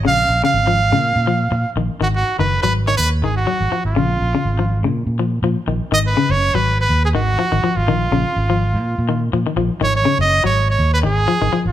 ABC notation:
X:1
M:4/4
L:1/16
Q:"Swing 16ths" 1/4=123
K:G#dor
V:1 name="Trumpet"
e3 e8- e3 z2 | F F2 B2 B2 c B2 G F4 E- | E6- E z8 z | d B2 c2 B2 B2 G F4- F E- |
E8- E3 z4 z | c c2 d2 c2 c2 B G4- G E |]
V:2 name="Clean electric guitar" clef=bass
C,2 z C,2 E,2 C,2 z E,2 z2 D,2 | D,2 z D,2 F,2 D,2 z D,2 F,2 E,2 | C,2 z C,2 E,2 C,2 z E,2 E,2 D,2 | D,2 C,2 z F,2 z3 D,2 E, D, E,2 |
D,2 C,2 z E,2 z3 D,2 E, D, E,2 | D,2 C,2 z F,2 z3 D,2 E, D, E,2 |]
V:3 name="Fingered electric bass" clef=bass
A,,,2 A,,, z G,,,3 A,,2 A,,3 A,, z A,,, z | G,,,2 z F,,,2 G,,,3 D,,2 G,,,2 z G,,, z G,,, | A,,,2 A,,, z G,,,3 A,,2 A,,3 A,, z A,,, z | G,,,2 z F,,,2 G,,,3 D,,2 G,,,2 z G,,, z G,,, |
A,,,2 A,,, z G,,,3 A,,2 A,,3 A,, z A,,, z | G,,,2 z F,,,2 G,,,3 D,,2 G,,,2 z G,,, z G,,, |]